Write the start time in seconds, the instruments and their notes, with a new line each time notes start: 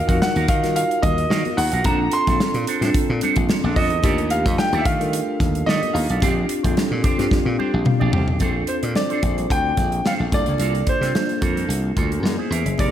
Already playing: tine electric piano D#4 F4 F#4 A#4, grand piano F5
0.08 slap bass F2, tine electric piano D#4 F4 F#4 A#4, clean electric guitar F#4 A#4 F#5, kick, closed hi-hat
0.20 grand piano F#5, muted clean electric guitar stroke, snare, high conga
0.35 slap bass D#2, clean electric guitar F#4 A#4 F5, closed hi-hat
0.48 slap bass D#3, grand piano F5, muted clean electric guitar stroke, kick, closed hi-hat
0.62 tine electric piano D#4 F4 F#4 A#4, muted clean electric guitar stroke, snare, closed hi-hat, low conga
0.75 grand piano F5, muted clean electric guitar stroke, closed hi-hat, muted conga
0.90 muted clean electric guitar stroke, closed hi-hat
1.02 slap bass D#2, grand piano D#5, kick, closed hi-hat, muted conga, low conga
1.17 muted clean electric guitar stroke, closed hi-hat
1.29 slap bass D#3, clean electric guitar F#4 A#4 F5, snare, high conga
1.45 muted clean electric guitar stroke, closed hi-hat, high conga
1.57 slap bass D#2, grand piano F#5, muted clean electric guitar stroke, open hi-hat
1.72 slap bass B1, clean electric guitar F#4 A#4 F5, closed hi-hat
1.84 slap bass A#1, tine electric piano C4 D4 F4 A4, clean electric guitar D4 A4 C5, grand piano A#5, kick, closed hi-hat, muted conga
2.00 muted clean electric guitar stroke
2.12 grand piano C6, muted clean electric guitar stroke, closed hi-hat
2.27 slap bass A#1, tine electric piano C4 D4 F4 A4, clean electric guitar D4 A4 C5, kick, snare, closed hi-hat
2.40 muted clean electric guitar stroke, snare, high conga
2.54 slap bass A#2, muted clean electric guitar stroke, closed hi-hat
2.67 clean electric guitar D4 A4 C5, closed hi-hat
2.81 slap bass A2, tine electric piano C4 D4 F4 A4, clean electric guitar D4 A4 C5, snare, closed hi-hat, low conga
2.94 muted slap bass stroke, kick, closed hi-hat, muted conga
3.10 slap bass A#2, muted clean electric guitar stroke
3.21 clean electric guitar D4 A4 C5, closed hi-hat, muted conga, low conga
3.36 slap bass A#1, muted clean electric guitar stroke, kick, closed hi-hat
3.49 muted clean electric guitar stroke, snare, high conga
3.64 slap bass A#1, clean electric guitar D4 A4 D5, high conga
3.76 slap bass F2, clean electric guitar D4 A4 C5, grand piano D#5, kick, open hi-hat, high conga
3.90 slap bass E2, muted clean electric guitar stroke, closed hi-hat
4.03 slap bass D#2, tine electric piano A3 D4 F4 G4, clean electric guitar G4 A4 D5, kick, closed hi-hat, muted conga
4.18 muted clean electric guitar stroke, closed hi-hat
4.30 grand piano F5, muted clean electric guitar stroke, closed hi-hat
4.45 slap bass F2, tine electric piano A3 D4 F4, clean electric guitar G4 A4 D#5, kick, snare, closed hi-hat
4.58 grand piano G5, muted clean electric guitar stroke, snare, high conga
4.73 slap bass D#2, clean electric guitar G4 A4 D5, closed hi-hat
4.78 grand piano E5
4.85 slap bass D#3, grand piano F5, muted clean electric guitar stroke, kick, closed hi-hat
5.00 tine electric piano D4 F4 A4 A#4, muted clean electric guitar stroke, closed hi-hat, low conga
5.13 muted clean electric guitar stroke, closed hi-hat, muted conga
5.28 muted clean electric guitar stroke
5.40 slap bass D#2, kick, snare, closed hi-hat, muted conga, low conga
5.55 muted clean electric guitar stroke, closed hi-hat
5.66 slap bass D#3, clean electric guitar G4 A4 D5, grand piano D#5, snare, high conga
5.82 muted clean electric guitar stroke, closed hi-hat, high conga
5.93 slap bass D#2, grand piano F5, muted clean electric guitar stroke, open hi-hat, high conga
6.09 slap bass B1, clean electric guitar G4 A4 D5, closed hi-hat
6.20 slap bass A#1, tine electric piano C4 D4 F4 G4, clean electric guitar D4 G4 C5, kick, closed hi-hat, muted conga
6.37 muted clean electric guitar stroke
6.49 muted clean electric guitar stroke, closed hi-hat
6.63 slap bass A#1, tine electric piano C4 D4 F4 A4, clean electric guitar D4 G4 C5, kick, closed hi-hat
6.76 muted clean electric guitar stroke, muted slap bass stroke, snare, high conga
6.91 slap bass A#2, muted clean electric guitar stroke
7.03 clean electric guitar D4 G4 C5, kick, closed hi-hat
7.18 slap bass G2, tine electric piano C4 D4 F4 G4, clean electric guitar D4 G4 C5, snare, closed hi-hat, low conga
7.31 kick, snare
7.45 slap bass A#2, muted clean electric guitar stroke
7.58 clean electric guitar D4 G4 C5, muted conga, low conga
7.73 slap bass A#1, muted clean electric guitar stroke
7.85 tine electric piano F5, muted clean electric guitar stroke, mid tom, high conga
8.00 slap bass A#1, clean electric guitar D4 G4 D5, high conga
8.12 slap bass C2, clean electric guitar D4 G4 C5, tine electric piano G5, floor tom, high conga
8.27 slap bass B1, muted clean electric guitar stroke, floor tom
8.39 slap bass A#1, tine electric piano C4 D4 F4 A4, clean electric guitar D4 A4 C5, kick, closed hi-hat, muted conga
8.55 muted clean electric guitar stroke
8.67 grand piano C5, muted clean electric guitar stroke, closed hi-hat
8.83 slap bass A#2, clean electric guitar D4 A4 D5, closed hi-hat
8.95 tine electric piano C4 D4 F4 C5, grand piano D5, muted clean electric guitar stroke, snare, high conga
9.10 clean electric guitar D4 A4 C5, closed hi-hat
9.23 slap bass A#1, muted clean electric guitar stroke, kick, closed hi-hat
9.38 muted clean electric guitar stroke, closed hi-hat, low conga
9.50 slap bass D2, grand piano G5, muted clean electric guitar stroke, kick, closed hi-hat
9.65 muted clean electric guitar stroke
9.77 slap bass A#1, kick, snare, closed hi-hat, muted conga
9.92 muted clean electric guitar stroke, closed hi-hat
10.05 clean electric guitar D4 A4 C5, grand piano F5, snare, high conga
10.20 slap bass A#1, muted clean electric guitar stroke, high conga
10.32 slap bass C2, tine electric piano A#3 D4 F4 A4, grand piano D5, muted clean electric guitar stroke, kick, closed hi-hat
10.46 slap bass C#2, clean electric guitar A#3 F4 A4, closed hi-hat
10.58 slap bass C2, clean electric guitar A#3 F4 A4, closed hi-hat, muted conga
10.74 muted clean electric guitar stroke, closed hi-hat
10.87 grand piano C5, muted clean electric guitar stroke, kick, closed hi-hat
11.01 slap bass C3, clean electric guitar A#3 F4 A4, snare, closed hi-hat
11.14 tine electric piano A#3 D4 F4 A4, muted clean electric guitar stroke, snare, high conga
11.29 muted clean electric guitar stroke, closed hi-hat
11.41 slap bass F2, clean electric guitar A#3 F4 A4, kick, closed hi-hat
11.56 clean electric guitar A#3 F4 A4, closed hi-hat, low conga
11.68 slap bass C2, closed hi-hat, muted conga
11.84 muted clean electric guitar stroke
11.96 slap bass D2, clean electric guitar A#3 F4 A4, kick, closed hi-hat, muted conga, low conga
12.11 muted clean electric guitar stroke, closed hi-hat
12.23 slap bass F#2, tine electric piano A#3 C#4 E4 G#4 G#5, muted clean electric guitar stroke, snare, high conga
12.38 clean electric guitar E4 G#4 C5, high conga
12.50 slap bass E2, clean electric guitar E4 G#4 A#4, tine electric piano E5, closed hi-hat
12.65 slap bass F#1, muted clean electric guitar stroke, closed hi-hat
12.78 slap bass F1, tine electric piano A#3 D4 D#4 G4, clean electric guitar D#4 A#4 D5, grand piano D5, kick, closed hi-hat, muted conga